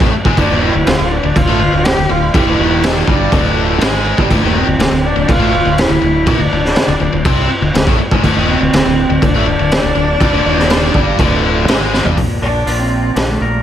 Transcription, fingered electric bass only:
0.01 0.11 A1 loud
0.12 muted fingered electric bass stroke soft
0.25 0.37 G#1 loud
0.37 0.49 D1 loud
0.49 0.72 D#1 loud
0.74 0.86 D1 medium
0.86 0.98 D1 medium
0.99 1.22 D1 medium
1.24 1.35 D1 medium
1.36 1.47 D1 medium
1.48 1.59 A1 loud
1.60 1.72 D1 medium
1.73 1.95 D1 medium
1.98 2.09 D1 medium
2.10 2.33 D1 medium
2.34 2.45 G1 loud
2.47 2.58 D1 medium
2.59 3.04 D#1 loud
3.07 3.30 G1 loud
3.32 3.78 D1 loud
3.81 4.15 G#1 loud
4.18 4.29 G1 loud
4.30 4.42 D1 medium
4.43 4.65 D#1 medium
4.66 4.78 D1 medium
4.78 4.90 D1 medium
4.91 5.14 D1 medium
5.16 5.27 D1 medium
5.29 5.39 D1 medium
5.39 5.51 A1 medium
5.52 5.64 D1 medium
5.65 5.88 D1 medium
5.89 6.01 D1 medium
6.02 6.25 D1 medium
6.27 6.38 A#1 loud
6.38 6.50 D1 medium
6.51 6.74 D1 medium
6.87 6.99 D1 medium
7.00 7.12 D1 medium
7.12 7.24 D1 medium
7.25 7.48 C2 medium
7.50 muted fingered electric bass stroke soft
7.61 7.73 D1 medium
7.74 7.85 D1 medium
7.87 7.98 A1 loud
7.99 muted fingered electric bass stroke soft
8.12 8.23 G#1 loud
8.24 8.35 D1 medium
8.36 8.59 D#1 loud
8.61 8.72 D1 medium
8.73 8.84 D1 medium
8.86 9.08 D1 medium
9.09 9.21 D1 medium
9.22 9.33 D1 medium
9.35 9.46 A1 loud
9.47 9.58 D1 medium
9.59 9.82 D1 medium
9.83 9.95 D1 medium
9.96 10.19 D1 medium
10.21 10.32 G1 medium
10.32 10.44 D1 loud
10.45 10.91 D#1 medium
10.94 11.17 G1 medium
11.19 11.65 D1 loud
11.68 12.03 G#1 loud
12.05 12.16 G1 medium
12.17 12.39 A#1 medium
12.42 12.63 A#1 medium
12.67 13.10 A#1 medium
13.16 13.38 A#1 medium
13.41 13.63 A#1 medium

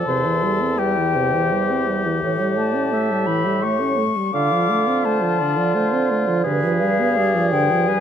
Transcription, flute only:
0.07 0.80 C6 medium
0.78 1.87 G5 medium
2.58 3.28 A5 medium
3.26 3.64 B5 medium
3.62 4.35 C#6 medium
4.33 5.06 D6 medium
5.05 6.09 A5 medium
6.79 7.47 F5 medium
7.52 7.89 G5 medium
7.88 8.00 G#5 medium

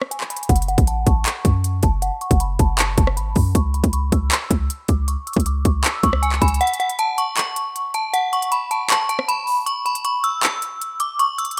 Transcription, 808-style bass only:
0.49 0.77 F#1 loud
0.78 1.05 A1 loud
1.07 1.25 A1 loud
1.45 1.82 F#2 loud
1.83 2.11 F#1 loud
2.31 2.58 F#1 loud
2.59 2.96 F#1 loud
2.98 3.18 F#1 loud
3.17 3.35 G#1 loud
3.36 3.54 F#2 loud
3.55 3.83 C#2 loud
3.84 4.11 C#2 loud
4.12 4.31 C#2 loud
4.51 4.69 C#2 loud
4.89 5.16 C#2 loud
5.36 5.64 C#2 loud
5.65 5.84 C#2 loud
6.03 6.40 C#2 loud
6.42 6.60 C#2 loud

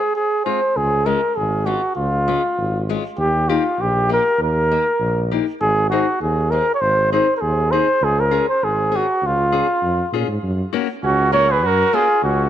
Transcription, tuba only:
0.76 1.16 C#2 medium
1.36 1.76 G#1 medium
1.97 2.36 C#2 medium
2.58 2.97 G#1 medium
3.18 3.57 D#2 medium
3.79 4.18 A#1 medium
4.38 4.78 D#2 medium
5.00 5.39 A#1 medium
5.61 6.00 G#1 medium
6.21 6.60 D#2 medium
6.81 7.20 G#1 medium
7.41 7.81 D#2 medium
8.01 8.41 C#2 medium
8.62 9.01 G#1 medium
9.22 9.61 C#2 medium
9.82 10.02 F2 medium
10.12 10.26 A#2 medium
10.28 10.41 G#2 medium
10.43 10.63 F#2 medium
11.03 11.65 C#2 medium
11.64 11.83 F#2 medium
12.23 12.49 C#2 loud

